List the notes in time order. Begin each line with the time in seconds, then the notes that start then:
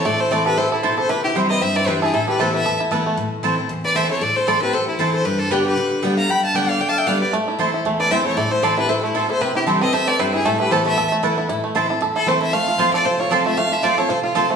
Already playing: E4 A4
0.05 A2 A3 A4 D5
0.20 A4 C5
0.31 E3 A3 C4 E4 A4 C5 D5 A5
0.46 G4 A4 B4
0.57 A2 E4 A4 C5
0.72 E4 A4, muted resonator guitar played with a steel bar stroke
0.83 B2 C4 E4 A4 C5 A5
0.98 A4 C5
1.09 C3 E4 G4 B4
1.24 E4 G4
1.35 E3 G3 C4 E4 C5 G5
1.50 E4 B4 D#5
1.61 G2 C4 C5 E5
1.76 E4 B4 D5
1.86 E3 G3 C4 E4 G4 B4 C5 G5
2.02 E4 G#4 A4
2.13 A2 E4 A4
2.28 G4 A4 B4
2.39 E3 A3 B3 E4 A4 B4 C5 A5
2.54 E4 B4 E5
2.66 E2 A4
2.80 E4
2.91 E3 A3 B3 E4 A4 B4 A5
3.06 A3
3.17 A2
3.43 E3 A3 C4 E4 C5 A5
3.58 C4 E4
3.69 E2
3.85 B4 D5
3.95 E3 A3 C4 E4 C5 E5 A5
4.09 C4 E4 A4 C#5
4.21 A2 A4 D5
4.36 A4 C5
4.47 E3 A3 C4 E4 A4 C5 D5 A5
4.62 C4 E4 G4 B4
4.73 E2 A4 C5
4.88 E4, muted resonator guitar played with a steel bar stroke
4.99 E3 A3 C4 E4 A4 C5 A5
5.13 A4 C5
5.25 G2 G4 B4
5.39 F4 A4
5.51 D3 G3 B3 G4 B4 D5 G5
5.66 G4 B4
5.77 D3
6.02 D3 G3 B3 G4 D5 G5
6.17 F5 A#5
6.29 G2 G5 B5
6.44 F5 A5
6.54 D3 G3 B3 G4 D5 G5
6.69 D5 F5
6.81 D3 D5 G5
6.89 F5 A5
6.98 E5 G5
7.07 D3 G3 B3 G4 D5 F5 G5
7.21 B3 G4 B4 D5
7.33 A2 A3
7.48 E4
7.59 E3 A3 C4 E4 C5 A5
7.74 E4
7.85 E2 A3
7.99 E4 B4 D5
8.11 E3 A3 C4 E4 C5 E5 A5
8.25 A3 C4 E4 A4 C#5
8.37 A2 E4 A4 D5
8.51 E4 A4 C5
8.63 E3 A3 C4 E4 A4 C5 D5 A5
8.77 C4 E4 G4 B4
8.89 A2 E4 A4 C5
9.03 A3 E4, muted resonator guitar played with a steel bar stroke
9.14 B2 C4 E4 A4 C5 A5
9.30 E4 A4 C5
9.41 C3 C4 G4 B4
9.55 E4 G4
9.66 E3 G3 C4 E4 A4 C5 G5
9.81 C4 E4 B4 D#5
9.93 C3 A4 C5 E5
10.08 C4 B4 D5
10.19 G2 C4 E4 G4 B4 C5 G5
10.34 E4 G#4
10.45 A2 A3 E4 A4
10.60 E4 G4 B4
10.71 E3 A3 B3 E4 A4 B4 C5 A5
10.86 A3 B4 E5
10.98 E2 A4
11.12 A3
11.23 E3 A3 B3 E4 B4 A5
11.38 E4
11.49 A2 E4
11.64 A3
11.75 E3 A3 C4 E4 C5 A5
11.89 C4 E4
12.01 E2 A4
12.16 E4 A4
12.26 E3 A3 C4 E4 C5 A5
12.42 E4 E5
12.53 F2 A3 F5
12.68 F4
12.78 F3 A3 C4 F4 C5 A5
12.94 A4 D5
13.05 C3 F4 C5
13.20 F4 C#5
13.31 F3 A3 C4 F4 A4 C5 D5 A5
13.45 A3 C4 F4 E5
13.57 F2 A3 F5
13.72 F4 E5
13.83 F3 A3 C4 F4 C5 D5 A5
13.97 C4 F4 A4 C#5
14.09 C3 F4 C5
14.23 F4
14.35 F3 A3 C4 F4 A4 C5 A5
14.50 A3 C5